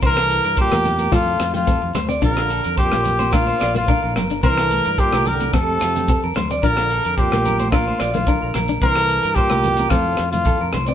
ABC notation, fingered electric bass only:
X:1
M:4/4
L:1/16
Q:1/4=109
K:Bb
V:1 name="Fingered electric bass" clef=bass
C,,3 G,,2 =E,,3 F,,2 F,,3 F,, D,,2 | B,,,3 F,,2 B,,,4- B,,, B,,,3 B,,, G,,,2 | C,,3 G,,2 C,,3 F,,2 F,,3 F,, D,,2 | B,,,3 F,,2 B,,,4- B,,, B,,,3 B,,, B,,,2 |
C,,3 G,,2 C,,3 F,,2 F,,3 F,, C,,2 |]